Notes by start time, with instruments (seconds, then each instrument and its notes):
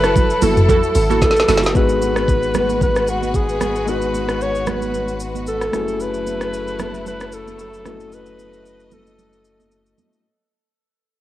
Already playing: log drum bass F#1, string section F#3 E4 A4, alto saxophone B4
0.04 synth pluck E4 F#4 A4, cross-stick, shaker
0.16 kick, low conga, shaker
0.30 shaker
0.42 log drum bass F#1, synth pluck E4 F#4 A4, alto saxophone A4, open hi-hat, high conga, low conga, shaker
0.57 mid tom, high conga, shaker
0.69 synth pluck E4 F#4 A4, kick, low conga, shaker
0.83 shaker
0.95 log drum bass G#1, open hi-hat, shaker
1.10 synth pluck E4 F#4 A4, high conga, shaker
1.22 alto saxophone A4, kick, snare, shaker
1.31 snare
1.36 snare, shaker
1.48 log drum bass F#1, synth pluck E4 F#4 A4, snare, open hi-hat, high conga, low conga, shaker
1.57 snare
1.63 snare, shaker
1.74 sub bass G#1, tine electric piano G#3 B3 D#4 F#4 G#4, string section G#3 F#4 B4, alto saxophone B4, kick, shaker
1.89 shaker
2.02 high conga, shaker
2.16 cross-stick, shaker
2.28 kick, shaker
2.43 shaker
2.54 cross-stick, high conga, low conga, shaker
2.69 high conga, shaker
2.81 alto saxophone B4, kick, low conga, shaker
2.96 cross-stick, shaker
3.07 alto saxophone F#4, shaker
3.23 high conga, shaker
3.34 alto saxophone G#4, kick, shaker
3.49 shaker
3.61 cross-stick, high conga, low conga, shaker
3.76 shaker
3.86 tine electric piano G#3 B3 D#4 F#4 B4, alto saxophone B4, shaker
4.01 shaker
4.14 high conga, shaker
4.29 cross-stick, shaker
4.41 alto saxophone C#5, shaker
4.55 shaker
4.67 alto saxophone B4, cross-stick, high conga, low conga, shaker
4.82 high conga, shaker
4.94 low conga, shaker
5.08 shaker
5.20 shaker
5.35 high conga, shaker
5.47 alto saxophone A4, shaker
5.61 cross-stick, shaker
5.72 sub bass F#1, string section F#3 A3 E4, tine electric piano A3 C#4 E4 F#4 G#4, cross-stick, high conga, low conga, shaker
5.88 shaker
6.00 alto saxophone B4, shaker
6.14 shaker
6.26 high conga, shaker
6.41 cross-stick, shaker
6.53 shaker
6.67 shaker
6.79 cross-stick, high conga, low conga, shaker
6.94 high conga, shaker
7.06 alto saxophone B4, low conga, shaker
7.20 cross-stick, shaker
7.32 alto saxophone A4, shaker
7.47 high conga, shaker
7.59 alto saxophone A4, shaker
7.74 shaker
7.85 tine electric piano A3 C#4 E4 F#4 A4, string section D#5, cross-stick, high conga, low conga, shaker
8.00 shaker
8.12 alto saxophone B4, shaker
8.26 shaker
8.39 high conga, shaker
8.53 shaker
8.66 shaker
8.80 shaker
8.91 alto saxophone A4, high conga, low conga, shaker
9.07 high conga, shaker
9.19 low conga, shaker
9.33 shaker
9.45 shaker
9.60 high conga, shaker
9.71 shaker
9.86 shaker
9.98 high conga, low conga, shaker
10.13 shaker